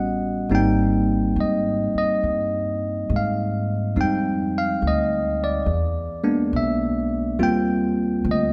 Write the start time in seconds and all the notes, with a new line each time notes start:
Already playing: A1 G3 B3 C#4 F#4 D#5 F#5
0.49 G#1 G3 A#3 C4 D#4
0.55 G5
1.36 G#2
1.41 D#5
1.95 D#5, muted upright bass stroke
2.23 G2
3.09 G#2
3.16 F5
3.96 F2 G3 G#3 C4 D#4
4.01 G5
4.58 F5
4.82 D2
4.87 D#5
5.44 D5
5.66 E2
6.23 G#3 A#3 B3 D4
6.53 B1 E5
7.39 D#2 G3 A#3 C4 F4
7.43 G5
8.24 D2
8.31 D#5